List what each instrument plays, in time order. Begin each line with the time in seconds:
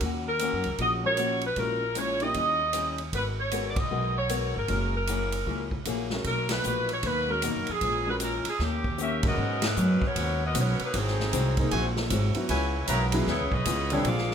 0.01 upright bass D#2, steel-string acoustic guitar D#3 A#3 C#4 F#4, kick, ride
0.28 saxophone section A#4
0.39 steel-string acoustic guitar D#3 A#3 C#4 F#4, hi-hat pedal, ride
0.53 upright bass F#2
0.64 upright bass C#2, ride
0.78 upright bass A#1, steel-string acoustic guitar D#3 A#3 C#4 F#4, saxophone section D#5, kick, ride
1.03 grand piano G#3 C#4 F#4 A#4, saxophone section C#5
1.17 steel-string acoustic guitar D#3 A#3 C#4 F#4, hi-hat pedal, ride
1.41 ride
1.46 saxophone section B4
1.56 upright bass A#1, steel-string acoustic guitar A#2 G#3 C#4 E4, grand piano G#3 C#4 F#4 A#4, saxophone section A#4, kick, ride
1.95 steel-string acoustic guitar A#2 G#3 C#4 E4, saxophone section C#5, hi-hat pedal, ride
2.20 grand piano A#3 C#4 E4 G4, saxophone section D#5, ride
2.34 upright bass D#2, steel-string acoustic guitar D#3 G3 C#4 E4, kick, ride
2.73 steel-string acoustic guitar D#3 G3 C#4 E4, hi-hat pedal, ride
2.98 ride
3.12 upright bass G#1, steel-string acoustic guitar G#3 B3 F#4 A#4, saxophone section B4, kick, ride
3.40 saxophone section C#5
3.52 steel-string acoustic guitar G#3 B3 F#4 A#4, hi-hat pedal, ride
3.70 saxophone section D5
3.76 saxophone section D#5, kick, ride
3.91 upright bass B1, steel-string acoustic guitar G#3 B3 F#4 A#4
4.18 saxophone section C#5
4.29 steel-string acoustic guitar G#3 B3 F#4 A#4, hi-hat pedal, ride
4.55 upright bass G#1, saxophone section A#4
4.68 upright bass F#1, steel-string acoustic guitar F#3 A#3 E4 G#4, grand piano G#3 C#4 F#4 A#4, kick, ride
4.96 saxophone section A#4
5.07 steel-string acoustic guitar F#3 A#3 E4 G#4, hi-hat pedal, ride
5.32 ride
5.46 upright bass C#2, steel-string acoustic guitar F#3 A#3 E4 G#4, kick
5.71 kick
5.85 upright bass A#1, steel-string acoustic guitar F#3 A#3 E4 G#4, hi-hat pedal, ride
6.10 grand piano G#3 C#4 F#4 A#4, snare
6.24 upright bass B1, steel-string acoustic guitar B2 F#3 A#3 D#4, saxophone section A#4, kick, ride
6.49 saxophone section B4, snare, ride
6.64 upright bass A#1, steel-string acoustic guitar B2 F#3 A#3 D#4, hi-hat pedal
6.89 saxophone section C#5, ride
7.03 upright bass D#2, steel-string acoustic guitar B2 F#3 A#3 D#4, saxophone section B4, kick, ride
7.28 grand piano G#3 C#4 F#4 A#4, saxophone section A#4
7.42 steel-string acoustic guitar B2 F#3 A#3 D#4, hi-hat pedal, ride
7.56 upright bass F#2
7.67 upright bass F2, saxophone section G#4, ride
7.81 upright bass A#1, steel-string acoustic guitar A#2 E3 G#3 C#4, kick, ride
8.06 grand piano G#3 C#4 F#4 A#4, saxophone section B4
8.20 steel-string acoustic guitar A#2 E3 G#3 C#4, saxophone section A#4, hi-hat pedal, ride
8.45 saxophone section G#4, muted upright bass stroke, ride
8.59 upright bass D#2, steel-string acoustic guitar D#3 A#3 C#4 G4, saxophone section G4, kick, snare
8.84 kick
8.98 steel-string acoustic guitar D#3 A#3 C#4 G4, saxophone section C#4 G4 A#4 E5, hi-hat pedal
9.23 grand piano G#3 C#4 F#4 A#4, kick, ride
9.27 saxophone section B3 F#4 A#4 D#5
9.37 upright bass G#2, steel-string acoustic guitar G#2 F#3 B3 C#4
9.62 snare, ride
9.66 saxophone section F#3 D#4 A#4 B4
9.76 upright bass F#2, steel-string acoustic guitar G#2 F#3 B3 C#4, hi-hat pedal
10.02 kick
10.06 saxophone section B3 F#4 A#4 C#5
10.15 upright bass D#2, steel-string acoustic guitar G#2 F#3 B3 C#4, kick, ride
10.45 saxophone section B3 F#4 A#4 D#5
10.54 upright bass B1, steel-string acoustic guitar G#2 F#3 B3 C#4, kick, hi-hat pedal, ride
10.60 saxophone section B3 F#4 A#4 C#5
10.79 muted upright bass stroke, ride
10.84 saxophone section F#3 A#3 D#4 B4
10.93 upright bass G#1, steel-string acoustic guitar G#2 F#3 C4 E4, kick, ride
10.98 saxophone section F#3 C4 D#4 G#4
11.07 snare
11.20 snare
11.32 upright bass C2, steel-string acoustic guitar G#2 F#3 C4 E4, kick, hi-hat pedal, ride
11.57 grand piano A#3 D#4 G#4 C5, kick, ride
11.71 upright bass A#1, steel-string acoustic guitar G#2 F#3 C4 E4, trumpet section F#4 C5 E5 G#5, kick, ride
11.96 snare
12.10 upright bass G#1, steel-string acoustic guitar G#2 F#3 C4 E4, kick, hi-hat pedal, ride
12.35 grand piano F#3 B3 E4 F#4, muted upright bass stroke, ride
12.49 upright bass C#2, steel-string acoustic guitar C#3 G#3 B3 E4, trumpet section E4 B4 C#5 G#5, kick, ride
12.88 upright bass B1, steel-string acoustic guitar C#3 G#3 B3 E4, saxophone section F#3 B3 D#4 A#4, trumpet section E4 B4 C#5 A#5, kick, hi-hat pedal, ride
13.12 grand piano F#3 B3 E4 G#4, saxophone section G#3 C#4 E4 B4, ride
13.27 upright bass D#2, steel-string acoustic guitar C#3 G#3 B3 E4, saxophone section B3 E4 G#4 C#5, kick, snare
13.41 upright bass C#2
13.52 upright bass B1, saxophone section C#4 G#4 B4 D#5, kick
13.65 upright bass C#2, steel-string acoustic guitar C#3 G#3 B3 E4, kick, hi-hat pedal, ride
13.90 grand piano D3 G3 C4 D4, saxophone section B3 E4 G#4 C#5, ride
14.05 upright bass A#1, steel-string acoustic guitar A#2 F3 G#3 D4, saxophone section A#3 F4 G#4 D5, kick, ride
14.18 snare
14.31 snare